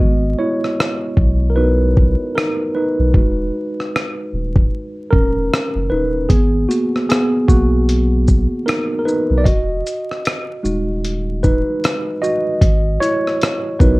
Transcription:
Already playing: D#5
0.00 G#1 G#3 B3 F#4
0.38 E4 C#5
0.64 cross-stick
0.80 cross-stick
1.17 B1, kick
1.50 A#4
1.56 B3 D#4 F#4 A#4 B4
1.97 kick
2.35 D#4 A#4, cross-stick
2.75 D#4 B4
2.99 B1
3.14 E1 G#3 D#4 F#4, kick
3.80 cross-stick
3.96 cross-stick
4.33 D#1
4.56 kick
5.11 D#1 C#4 A#4, kick
5.36 E1
5.53 cross-stick
5.75 F#1
5.90 D#1 D#4 B4
6.29 G#1 B3 G#4, kick, closed hi-hat
6.69 A#3 B3 F#4, closed hi-hat, shaker
6.96 cross-stick
7.09 B3 G#4, cross-stick, closed hi-hat
7.48 B1 A#3 F#4, kick, shaker
7.89 closed hi-hat
8.28 kick, shaker
8.66 D#4 A#4, cross-stick, closed hi-hat
8.99 A#4
9.05 D#4 B4, shaker
9.30 B1
9.38 D5
9.44 E1 F#4 D#5, kick, closed hi-hat
9.87 closed hi-hat, shaker
10.11 cross-stick
10.25 cross-stick, closed hi-hat
10.63 D#1 G#3 D#4 F#4, shaker
11.04 closed hi-hat
11.43 D#4 B4, kick, shaker
11.84 cross-stick, closed hi-hat
12.22 F#4 D#5, shaker
12.61 G#1, kick, closed hi-hat
13.00 E4 C#5, closed hi-hat, shaker
13.27 cross-stick
13.41 cross-stick, closed hi-hat
13.79 B1 B3 D#4 F#4 A#4 B4, kick, shaker

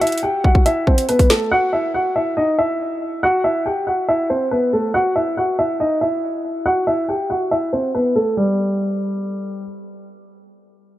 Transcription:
0.01 E4 E5, closed hi-hat
0.07 closed hi-hat
0.12 closed hi-hat
0.18 closed hi-hat
0.23 G4 G5
0.44 F#4 F#5, kick
0.55 kick
0.66 E4 E5, closed hi-hat
0.87 C4 C5, kick
0.98 closed hi-hat
1.09 B3 B4, closed hi-hat
1.19 kick, closed hi-hat
1.30 A3 A4, snare, closed hi-hat
1.51 F#4 F#5
1.73 E4 E5
1.94 F#4 F#5
2.16 E4 E5
2.37 D#4 D#5
2.59 E4 E5
3.23 F#4 F#5
3.44 E4 E5
3.66 G4 G5
3.87 F#4 F#5
4.09 E4 E5
4.30 C4 C5
4.51 B3 B4
4.73 A3 A4
4.94 F#4 F#5
5.16 E4 E5
5.37 F#4 F#5
5.59 E4 E5
5.80 D#4 D#5
6.01 E4 E5
6.66 F#4 F#5
6.87 E4 E5
7.09 G4 G5
7.30 F#4 F#5
7.51 E4 E5
7.73 C4 C5
7.95 B3 B4
8.16 A3 A4
8.37 G3

